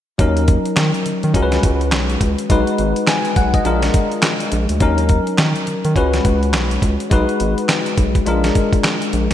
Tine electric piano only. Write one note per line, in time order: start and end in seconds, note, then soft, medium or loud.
0.18 1.32 F#3 medium
0.18 1.32 C#4 medium
0.18 1.32 D#4 medium
0.18 1.33 A#4 medium
1.34 2.47 G#3 medium
1.34 2.47 C#4 medium
1.34 2.48 F#4 medium
1.34 1.43 A#4 medium
1.43 2.50 B4 medium
2.49 3.62 G#3 medium
2.49 3.63 D#4 medium
2.49 3.63 F#4 medium
2.49 3.64 B4 medium
3.08 3.35 G#5 medium
3.37 3.53 F#5 medium
3.54 3.81 D#5 medium
3.64 4.78 G#3 medium
3.64 4.78 D4 medium
3.64 4.79 F4 medium
3.64 4.79 A#4 medium
4.80 5.93 F#3 medium
4.80 5.94 C#4 medium
4.80 5.94 D#4 medium
4.80 5.94 A#4 medium
5.95 7.08 G#3 medium
5.95 7.09 C#4 medium
5.95 7.09 F#4 medium
5.95 7.10 B4 medium
7.10 8.24 G#3 medium
7.10 8.24 D#4 medium
7.10 8.25 F#4 medium
7.10 8.25 B4 medium
8.26 9.34 G#3 medium
8.26 9.34 D4 medium
8.26 9.34 F4 medium
8.26 9.34 A#4 medium